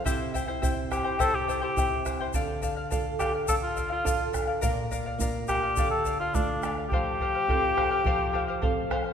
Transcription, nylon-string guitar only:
X:1
M:2/4
L:1/8
Q:1/4=105
K:F
V:1 name="Nylon-string guitar"
C,2 [CEG]2 | C,2 [CEG]2 | D,2 [DFA]2 | D,2 [DFA]2 |
B,,2 [B,DF]2 | D,2 [A,DF]2 | F,2 [CFA]2 | F,2 [CFA]2 |]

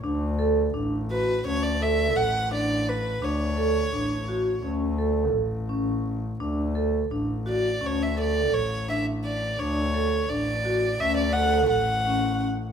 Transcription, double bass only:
X:1
M:9/8
L:1/8
Q:3/8=57
K:D
V:1 name="Double bass" clef=bass
D,,2 A,,,2 D,,2 A,,,3 | D,,2 A,,,2 D,,2 A,,,3 | D,,2 A,,,2 D,,2 A,,,3 | D,,2 A,,,2 D,,2 A,,,3 |]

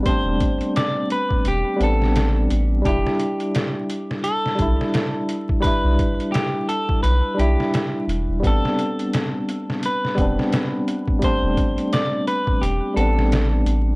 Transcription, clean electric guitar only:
X:1
M:4/4
L:1/8
Q:"Swing 16ths" 1/4=86
K:Am
V:1 name="Clean electric guitar"
c2 d B G A2 z | G4 A4 | B2 G A B G2 z | A4 B4 |
c2 d B G A2 z |]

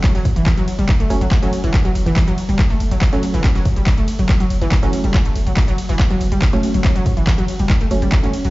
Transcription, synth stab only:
X:1
M:4/4
L:1/16
Q:1/4=141
K:F#phr
V:1 name="Synth stab"
z8 z2 [F,A,C] z2 [F,A,C] z2 | z12 z [F,A,C]2 z | z12 z [F,A,C]2 z | z12 z [F,A,C]2 z |
z8 z2 [F,A,C] z2 [F,A,C] z2 |]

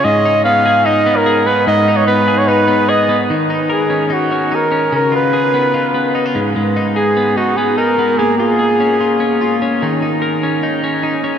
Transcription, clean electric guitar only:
X:1
M:4/4
L:1/16
Q:1/4=147
K:Abdor
V:1 name="Clean electric guitar"
A,,2 E2 C2 A2 E2 C2 A2 C2 | A,,2 E2 C2 A2 E2 C2 A2 C2 | E,2 E2 B2 D2 E2 D2 E2 D2 | D,2 F2 A2 C2 F2 C2 E F A,,2 |
A,,2 E2 A2 C2 E2 C2 E2 C2 | B,2 F2 A2 D2 F2 D2 F2 D2 | E,2 E2 B2 D2 E2 D2 E2 D2 |]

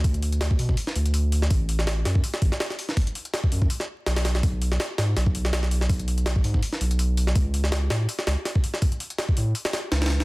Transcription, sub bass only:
X:1
M:4/4
L:1/8
Q:"Swing 16ths" 1/4=164
K:A
V:1 name="Sub bass" clef=bass
D,,3 B,, z D,,3 | A,,,3 F,, z A,,, z2 | z3 F,, z2 B,,,2 | B,,,2 z G,, B,,,4- |
B,,,3 G,, z B,,,3 | C,,3 A,, z C,, z2 | z3 A,, z2 C,,2 |]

